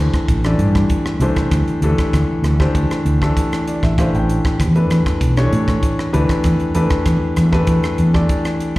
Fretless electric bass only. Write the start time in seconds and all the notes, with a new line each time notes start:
0.28 A1
0.59 G2
1.20 C2
1.37 muted fretless electric bass stroke
1.52 D2
1.82 D2
1.99 muted fretless electric bass stroke
2.14 D2
2.42 D2
2.75 D2
3.05 D2
3.83 A1
4.14 A1
4.45 muted fretless electric bass stroke
4.60 E2
4.91 E2
5.21 B1
5.53 A2
6.14 D2
6.44 E2
6.60 muted fretless electric bass stroke
6.75 E2
7.06 E2
7.21 muted fretless electric bass stroke
7.37 E2
7.68 E2
7.84 muted fretless electric bass stroke
7.99 E2